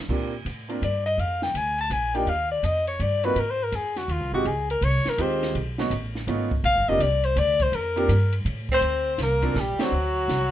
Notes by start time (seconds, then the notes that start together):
0.09 A#2 A#3 C4 D4 F4 G4, kick, crash
0.45 A2, kick, hi-hat pedal, ride
0.69 A#3 C4 D4 F4 A#4, ride
0.82 G2 D5, kick, hi-hat pedal, ride
1.06 D#5, ride
1.18 F2 F5, kick, ride
1.42 G5, snare
1.54 D2 G#5, kick, hi-hat pedal, ride
1.78 A5, ride
1.90 A#1 G#5, kick, hi-hat pedal, ride
2.14 A#3 D4 D#4 F4 G4 G5, ride
2.26 D#2 F5, kick, ride
2.51 D5
2.63 F2 D#5, kick, hi-hat pedal, ride
2.87 C#5, ride
3.00 G2 D5, kick, hi-hat pedal, ride
3.23 A#3 C4 D#4 F4 F#4 B4, ride
3.35 G#2, kick, ride
3.40 A#4
3.51 C5
3.64 A#4
3.72 F2 G#4, kick, hi-hat pedal, ride
3.96 F#4, snare, ride
4.08 D#2 F4, kick, ride
4.20 C2
4.32 G#1 G#3 C4 D#4 F4 F#4 G4
4.45 C#2 G#4, kick, ride
4.70 A#4, ride
4.81 C2 C#5, kick, hi-hat pedal, ride
5.05 A#4, muted upright bass stroke, snare, ride
5.18 D#2 G#3 C4 D#4 F4 G4, kick, hi-hat pedal, ride
5.22 C5
5.43 snare, ride
5.54 B1, kick, ride
5.78 A3 B3 C#4 D#4 F#4, snare
5.90 A1, kick, hi-hat pedal, ride
6.15 snare
6.27 G#1 A3 B3 C#4 D#4 F4, kick, ride
6.51 kick
6.64 A#1 F5, kick, ride
6.75 G1
6.88 F1 A#3 C4 D4 F4 G4 D#5
7.00 C2 D5, kick, hi-hat pedal, ride
7.24 C5, ride
7.36 D2 D5, kick, hi-hat pedal, ride
7.60 C5, kick, ride
7.72 F2 A#4, kick, ride
7.96 A#3 C4 D4 F4 G4, ride
8.08 G2, kick, hi-hat pedal, ride
8.33 ride
8.45 A2, kick, ride
8.69 C4, kick
8.74 C5
8.81 D2, kick, ride
9.18 C2 A#3, kick, snare, hi-hat pedal, ride
9.23 A#4
9.42 A#3 C4 D4 F4 A4, kick, ride
9.54 A#1 G3, kick, snare, hi-hat pedal
9.60 G4
9.79 F#3 A3 C4 D4 F#4 C5, muted upright bass stroke, snare, ride
9.85 F#4
9.92 D2
10.28 C2, kick, snare, hi-hat pedal, ride